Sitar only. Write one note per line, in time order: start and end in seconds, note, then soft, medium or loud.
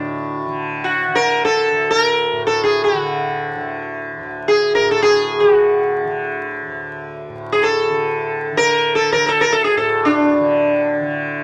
0.00 0.38 D4 medium
0.84 1.16 F#4 medium
1.15 1.43 A#4 medium
1.45 1.90 A4 medium
1.91 2.02 A4 medium
2.02 2.41 A#4 medium
2.47 2.63 A4 medium
2.64 2.83 G#4 medium
2.84 3.86 F#4 medium
4.48 4.74 G#4 medium
4.75 4.90 A#4 medium
4.91 5.02 A4 medium
5.02 5.41 G#4 medium
5.40 6.44 F#4 medium
7.52 7.64 G#4 medium
7.63 8.54 A4 medium
8.57 8.95 A#4 loud
8.95 9.12 A4 medium
9.12 9.25 A#4 medium
9.26 9.43 A4 medium
9.26 9.29 A#4 medium
9.41 9.53 A#4 medium
9.52 9.64 A4 medium
9.64 9.77 G#4 medium
9.77 10.07 A4 medium
10.05 10.91 D4 medium